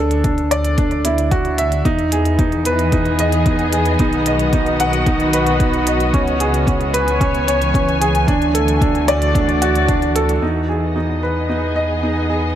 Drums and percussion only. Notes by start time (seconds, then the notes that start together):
0.11 closed hi-hat
0.24 kick, closed hi-hat
0.38 closed hi-hat
0.51 closed hi-hat
0.65 closed hi-hat
0.78 kick, closed hi-hat
0.91 closed hi-hat
1.05 closed hi-hat
1.18 closed hi-hat
1.31 kick, closed hi-hat
1.45 closed hi-hat
1.58 closed hi-hat
1.72 closed hi-hat
1.85 kick, closed hi-hat
1.99 closed hi-hat
2.12 closed hi-hat
2.25 closed hi-hat
2.39 kick, closed hi-hat
2.52 closed hi-hat
2.65 closed hi-hat
2.79 closed hi-hat
2.92 kick, closed hi-hat
3.05 closed hi-hat
3.19 closed hi-hat
3.32 closed hi-hat
3.46 kick, closed hi-hat
3.59 closed hi-hat
3.73 closed hi-hat
3.85 closed hi-hat
3.99 kick, closed hi-hat
4.13 closed hi-hat
4.26 closed hi-hat
4.39 closed hi-hat
4.53 kick, closed hi-hat
4.66 closed hi-hat
4.80 closed hi-hat
4.93 closed hi-hat
5.06 kick, closed hi-hat
5.20 closed hi-hat
5.33 closed hi-hat
5.47 closed hi-hat
5.60 kick, closed hi-hat
5.74 closed hi-hat
5.87 closed hi-hat
6.00 closed hi-hat
6.14 kick, closed hi-hat
6.27 closed hi-hat
6.40 closed hi-hat
6.54 closed hi-hat
6.67 kick, closed hi-hat
6.81 closed hi-hat
6.94 closed hi-hat
7.08 closed hi-hat
7.21 kick, closed hi-hat
7.35 closed hi-hat
7.48 closed hi-hat
7.62 closed hi-hat
7.74 kick, closed hi-hat
7.89 closed hi-hat
8.02 closed hi-hat
8.15 closed hi-hat
8.28 kick, closed hi-hat
8.42 closed hi-hat
8.55 closed hi-hat
8.68 closed hi-hat
8.81 kick, closed hi-hat
8.95 closed hi-hat
9.08 closed hi-hat
9.22 closed hi-hat
9.35 kick, closed hi-hat
9.49 closed hi-hat
9.62 closed hi-hat
9.75 closed hi-hat
9.88 kick, closed hi-hat
10.02 closed hi-hat
10.16 closed hi-hat
10.29 closed hi-hat